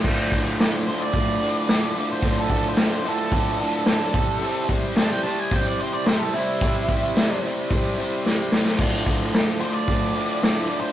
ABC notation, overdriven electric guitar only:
X:1
M:4/4
L:1/8
Q:1/4=110
K:Dm
V:1 name="Overdriven electric guitar" clef=bass
[D,,A,,D,] [D,,A,,D,] [D,,A,,D,] [D,,A,,D,] [D,,A,,D,] [D,,A,,D,] [D,,A,,D,] [D,,A,,D,] | [D,,A,,D,] [D,,A,,D,] [D,,A,,D,] [D,,A,,D,] [D,,A,,D,] [D,,A,,D,] [D,,A,,D,] [C,G,C] | [C,G,C] [C,G,C] [C,G,C] [C,G,C] [C,G,C] [C,G,C] [C,G,C] [C,G,C] | [C,G,C] [C,G,C] [C,G,C] [C,G,C] [C,G,C] [C,G,C] [C,G,C] [C,G,C] |
[D,,A,,D,] [D,,A,,D,] [D,,A,,D,] [D,,A,,D,] [D,,A,,D,] [D,,A,,D,] [D,,A,,D,] [D,,A,,D,] |]